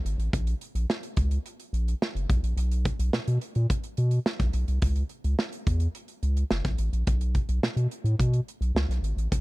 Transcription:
0.05 analog synth bass G#1, closed hi-hat
0.18 analog synth bass A1, closed hi-hat
0.33 analog synth bass A#1, kick, closed hi-hat
0.47 closed hi-hat
0.61 closed hi-hat
0.75 analog synth bass A#1, closed hi-hat
0.90 snare
1.03 closed hi-hat
1.17 analog synth bass C#2, kick, closed hi-hat
1.31 closed hi-hat
1.46 closed hi-hat
1.60 closed hi-hat
1.73 analog synth bass A#1, closed hi-hat
1.88 closed hi-hat
2.02 snare
2.15 analog synth bass F#1, closed hi-hat
2.29 analog synth bass B1, kick, closed hi-hat
2.43 analog synth bass A#1, closed hi-hat
2.57 analog synth bass B1, closed hi-hat
2.72 closed hi-hat
2.85 kick, closed hi-hat
2.99 analog synth bass B1, closed hi-hat
3.13 analog synth bass B2, snare
3.28 analog synth bass B2, closed hi-hat
3.41 closed hi-hat
3.55 analog synth bass A#2, closed hi-hat
3.70 kick, closed hi-hat
3.84 closed hi-hat
3.97 analog synth bass B2, closed hi-hat
4.11 closed hi-hat
4.26 snare
4.39 analog synth bass B1, kick, snare, closed hi-hat
4.53 analog synth bass B1, closed hi-hat
4.68 analog synth bass C2, closed hi-hat
4.82 analog synth bass C#2, kick, closed hi-hat
4.96 closed hi-hat
5.09 closed hi-hat
5.24 analog synth bass C#2, closed hi-hat
5.39 snare
5.52 closed hi-hat
5.67 analog synth bass E2, kick, closed hi-hat
5.80 closed hi-hat
5.95 closed hi-hat
6.08 closed hi-hat
6.23 analog synth bass C#2, closed hi-hat
6.37 closed hi-hat
6.51 analog synth bass F#1, snare
6.65 analog synth bass A#1, kick, snare, closed hi-hat
6.78 analog synth bass A1, closed hi-hat
6.93 analog synth bass A#1, closed hi-hat
7.07 analog synth bass B1, kick, closed hi-hat
7.21 closed hi-hat
7.35 kick, closed hi-hat
7.49 analog synth bass B1, closed hi-hat
7.63 analog synth bass B2, snare
7.76 analog synth bass B2, closed hi-hat
7.91 closed hi-hat
8.04 analog synth bass A2, closed hi-hat
8.19 analog synth bass B2, kick, closed hi-hat
8.33 closed hi-hat
8.48 closed hi-hat
8.61 analog synth bass B1, closed hi-hat
8.75 analog synth bass C#2, snare
8.89 analog synth bass B1, snare, closed hi-hat
9.02 analog synth bass G#1, closed hi-hat
9.17 analog synth bass A1, closed hi-hat
9.32 analog synth bass A#1, kick, closed hi-hat

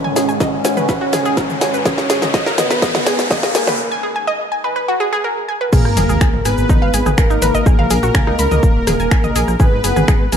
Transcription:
Already playing: synth drone G#2 D#3, ambient pad G#3 C#4 G#4 D#5 F#5, analog polysynth C#4, riser
0.04 synth arpeggio sound G#5, mid tom
0.16 synth arpeggio sound G#4, snare, open hi-hat, shaker
0.29 synth arpeggio sound G#5, shaker
0.40 synth arpeggio sound D#5, kick, snare, mid tom, shaker
0.65 synth arpeggio sound G#5, snare, open hi-hat, shaker
0.77 synth arpeggio sound B4, mid tom, shaker
0.89 synth arpeggio sound B4, kick, snare, shaker
1.01 synth arpeggio sound F#4
1.13 synth arpeggio sound G#4, snare, open hi-hat, mid tom, shaker
1.25 synth arpeggio sound G#4, shaker
1.37 synth arpeggio sound A#4, kick, snare, shaker
1.50 mid tom, shaker
1.61 synth arpeggio sound G#5, snare, open hi-hat, shaker
1.74 synth arpeggio sound B4, shaker
1.85 analog polysynth C#4, synth arpeggio sound G#4, kick, snare, mid tom, shaker
1.98 snare
2.10 synth arpeggio sound G#4, snare, open hi-hat, shaker
2.22 synth arpeggio sound D#5, snare, mid tom, shaker
2.34 synth arpeggio sound D#5, kick, snare, shaker
2.46 synth arpeggio sound A#4, snare
2.58 analog polysynth B3, synth arpeggio sound D#5, snare, open hi-hat, mid tom, shaker
2.67 ambient pad A#4, synth arpeggio sound B4, snare, shaker
2.82 synth arpeggio sound D#5, kick, snare, shaker
2.95 snare, mid tom
3.06 synth arpeggio sound G#4, snare, open hi-hat, shaker
3.19 snare, shaker
3.31 analog polysynth A#3, synth arpeggio sound D#5, kick, snare, mid tom, shaker
3.43 synth arpeggio sound D#5, snare, shaker
3.55 synth arpeggio sound G#5, snare, open hi-hat, shaker
3.67 synth arpeggio sound B4, snare, mid tom, shaker
3.92 synth arpeggio sound G#5
4.03 synth arpeggio sound G#4
4.16 synth arpeggio sound G#5
4.27 synth arpeggio sound D#5
4.52 synth arpeggio sound G#5
4.64 synth arpeggio sound B4
4.76 synth arpeggio sound B4
4.88 synth arpeggio sound F#4
5.00 synth arpeggio sound G#4
5.13 synth arpeggio sound G#4
5.24 synth arpeggio sound A#4
5.49 synth arpeggio sound G#5
5.61 synth arpeggio sound B4
5.73 detuned saw bass G#1, analog polysynth A#3, ambient pad G#4, synth arpeggio sound G#4, supersaw synth A#4, kick, crash, sub drop, shaker
5.85 detuned saw bass G#1, cross-stick
5.97 detuned saw bass F#1, synth arpeggio sound G#4, open hi-hat, mid tom, shaker
6.09 detuned saw bass G#1, synth arpeggio sound G#4, shaker
6.21 detuned saw bass G#1, synth arpeggio sound G#4, finger snap, kick, shaker
6.33 detuned saw bass G#1, mid tom
6.45 detuned saw bass G#1, analog polysynth B3, synth arpeggio sound G#4, supersaw synth B4, cross-stick, open hi-hat, shaker
6.58 detuned saw bass G#1, shaker
6.69 detuned saw bass G#1, synth arpeggio sound D#4, kick, mid tom, shaker
6.82 detuned saw bass G#1, synth arpeggio sound F5
6.94 detuned saw bass G#1, synth arpeggio sound G#4, open hi-hat, shaker
7.06 detuned saw bass G#1, synth arpeggio sound G#4, cross-stick, mid tom, shaker
7.18 detuned saw bass G#1, analog polysynth A#3, supersaw synth A#4, synth arpeggio sound G#5, finger snap, kick, shaker
7.30 detuned saw bass G#1, synth arpeggio sound D#4, shaker
7.42 detuned saw bass G#1, synth arpeggio sound B4, open hi-hat, mid tom, shaker
7.55 detuned saw bass G#1, synth arpeggio sound D#5, shaker
7.66 detuned saw bass A#1, synth arpeggio sound G#4, kick, cross-stick, shaker
7.79 detuned saw bass A#1, synth arpeggio sound F5, mid tom
7.90 detuned saw bass A#1, synth arpeggio sound G#4, open hi-hat, shaker
8.03 detuned saw bass A#1, synth arpeggio sound F#4, shaker
8.15 detuned saw bass C#2, synth arpeggio sound G#5, finger snap, kick, mid tom, shaker
8.27 detuned saw bass C#2, synth arpeggio sound D#4, cross-stick
8.39 detuned saw bass C#2, synth arpeggio sound B5, open hi-hat, shaker
8.51 detuned saw bass C#2, synth arpeggio sound D#5, mid tom, shaker
8.63 detuned saw bass D#1, kick, shaker
8.76 detuned saw bass D#1
8.87 detuned saw bass D#1, synth arpeggio sound G#4, cross-stick, open hi-hat, mid tom, shaker
9.00 detuned saw bass D#1, synth arpeggio sound G#5, shaker
9.11 detuned saw bass A#1, synth arpeggio sound G#5, finger snap, kick, shaker
9.24 detuned saw bass A#1, synth arpeggio sound D#5, mid tom, shaker
9.36 detuned saw bass A#1, synth arpeggio sound G#4, open hi-hat, shaker
9.48 detuned saw bass A#1, cross-stick, shaker
9.60 detuned saw bass G#1, analog polysynth B3, synth arpeggio sound G#4, supersaw synth B4, kick, mid tom, shaker
9.72 detuned saw bass G#1
9.84 detuned saw bass F#1, synth arpeggio sound G#4, open hi-hat, shaker
9.96 detuned saw bass G#1, synth arpeggio sound G#4, mid tom, shaker
10.08 detuned saw bass G#1, synth arpeggio sound G#4, finger snap, kick, cross-stick, shaker
10.21 detuned saw bass G#1
10.32 detuned saw bass G#1, analog polysynth A#3, synth arpeggio sound G#4, supersaw synth A#4, open hi-hat, mid tom, shaker

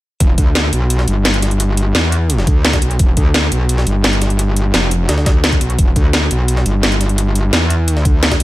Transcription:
0.20 wobble bass E1, kick, closed hi-hat
0.38 wobble bass D2, kick, closed hi-hat
0.55 snare, closed hi-hat
0.73 wobble bass B1, closed hi-hat
0.90 closed hi-hat
0.99 snare
1.08 wobble bass G1, closed hi-hat
1.25 snare, closed hi-hat
1.34 closed hi-hat
1.42 snare, closed hi-hat
1.51 closed hi-hat
1.60 closed hi-hat
1.77 closed hi-hat
1.95 wobble bass E2, snare, closed hi-hat
2.12 closed hi-hat
2.30 closed hi-hat
2.38 snare
2.47 wobble bass D2, kick, closed hi-hat
2.65 snare, closed hi-hat
2.73 kick, snare, closed hi-hat
2.82 wobble bass B1, closed hi-hat
2.91 closed hi-hat
2.99 wobble bass E1, kick, closed hi-hat
3.17 wobble bass D2, kick, closed hi-hat
3.34 snare, closed hi-hat
3.52 wobble bass B1, closed hi-hat
3.69 closed hi-hat
3.78 snare
3.87 wobble bass G1, closed hi-hat
4.04 snare, closed hi-hat
4.13 closed hi-hat
4.22 snare, closed hi-hat
4.30 closed hi-hat
4.39 closed hi-hat
4.57 closed hi-hat
4.74 wobble bass F1, snare, closed hi-hat
4.91 closed hi-hat
5.09 wobble bass D2, snare, closed hi-hat
5.18 snare
5.26 kick, snare, closed hi-hat
5.44 snare, closed hi-hat
5.52 kick, closed hi-hat
5.61 wobble bass B1, closed hi-hat
5.70 closed hi-hat
5.79 wobble bass E1, kick, closed hi-hat
5.96 wobble bass D2, kick, closed hi-hat
6.13 snare, closed hi-hat
6.31 wobble bass B1, closed hi-hat
6.48 closed hi-hat
6.57 snare
6.66 wobble bass G1, closed hi-hat
6.83 snare, closed hi-hat
6.92 closed hi-hat
7.01 snare, closed hi-hat
7.09 closed hi-hat
7.18 closed hi-hat
7.35 closed hi-hat
7.53 wobble bass E2, snare, closed hi-hat
7.70 closed hi-hat
7.88 closed hi-hat
7.97 snare
8.05 wobble bass D2, kick, closed hi-hat
8.23 snare, closed hi-hat
8.31 kick, snare, closed hi-hat
8.40 wobble bass B1, closed hi-hat

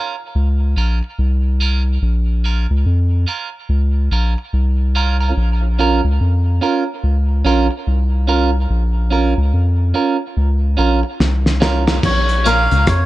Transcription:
Already playing: clean electric guitar C#4 F4 A#4
0.35 sub bass C#2
0.77 sub bass A#1, clean electric guitar C#4 F4 A#4
1.03 muted clean electric guitar stroke
1.19 sub bass C2
1.60 clean electric guitar C#4 F4 A#4
2.02 sub bass A#1
2.44 clean electric guitar C#4 F4 A#4
2.70 sub bass C#2
2.86 sub bass F2
3.27 clean electric guitar C#4 F4 A#4
3.69 sub bass C#2
4.11 sub bass A#1, clean electric guitar C#4 F4 A#4
4.38 muted clean electric guitar stroke
4.53 sub bass C2
4.95 clean electric guitar C#4 F4 A#4
5.21 clean electric guitar C#4 F4 A#4
5.37 sub bass A#1
5.79 clean electric guitar C#4 F4 A#4
6.04 sub bass C#2
6.21 sub bass F2
6.61 clean electric guitar C#4 F4 A#4
7.04 sub bass C#2
7.45 sub bass A#1, clean electric guitar C#4 F4 A#4
7.72 muted clean electric guitar stroke
7.87 sub bass C2
8.27 clean electric guitar C#4 F4 A#4
8.70 sub bass A#1
9.11 clean electric guitar C#4 F4 A#4
9.38 sub bass C#2
9.53 sub bass F2
9.94 clean electric guitar C#4 F4 A#4
10.37 sub bass C#2
10.77 sub bass A#1, clean electric guitar C#4 F4 A#4
11.03 muted clean electric guitar stroke
11.20 sub bass C2, snare
11.46 snare
11.60 clean electric guitar C#4 F4 A#4, snare
11.87 clean electric guitar C#4 F4 A#4, snare
12.03 sub bass A#1, melodica C#5, kick, crash
12.29 closed hi-hat
12.44 clean electric guitar A#2 C#4 F4 A#4, upright piano A#3 C#4 F4 A#4, melodica F5, closed hi-hat
12.71 sub bass C#2, clean electric guitar C#3, closed hi-hat
12.87 sub bass F2, melodica C#5, kick, cross-stick, closed hi-hat

